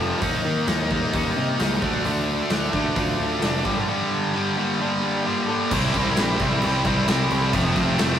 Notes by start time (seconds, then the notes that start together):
Already playing: F1 A3 C4 F4
0.00 F2 C3 F3 A4
0.21 D#2 D#3 A#3 D#4, kick, open hi-hat
0.44 D#3 A#3
0.67 D#2 D#3 A#3 D#4, snare, open hi-hat
0.90 D#3 G3 A#3 D#4, kick
1.03 snare
1.13 D#2 D#3 A#3 D#4 G4, kick, open hi-hat
1.36 C3 A#3
1.59 C#2 D#3 G3 A#3 D#4, snare, open hi-hat
1.72 snare
1.82 D2 D3 A3 D4, kick
2.04 D2 D3 A3 D4, open hi-hat
2.29 D4
2.50 D2 D3 A3 D4, snare, open hi-hat
2.73 D2 D3 A3 D4, kick
2.95 D2 D3 A3 D4 F4, kick, open hi-hat
3.20 D2 D3
3.41 F1 D3 A3 D4, snare, open hi-hat
3.55 snare
3.64 G1 G2 D3 G3, kick
3.88 G2 D3 G3
4.10 D3
4.33 G2 D3 G3
4.56 G2 D3 G3 A#3
4.79 G2 D3 G3 D4
5.01 G3
5.24 G2 D3 G3 A#3
5.46 G2 D3 A4
5.51 G3
5.71 C2 C3 G3 C4 E4, kick, crash
5.94 C2 G3 C4 E4, kick, crash
6.16 A#1 C3 G3 C4, snare, crash
6.21 E4
6.40 C2 G3 C4 E4, kick, crash
6.62 C2, crash
6.85 C2 G3 C4 E4, kick, crash
7.08 C2 C3 G3 C4 E4, snare, crash
7.30 C2, crash
7.53 F1 F2 C3 F3 A3 C4, kick, crash
7.76 F1 F3 A3 C4, kick, crash
7.98 F1 C3 F3 A3 C4, snare, crash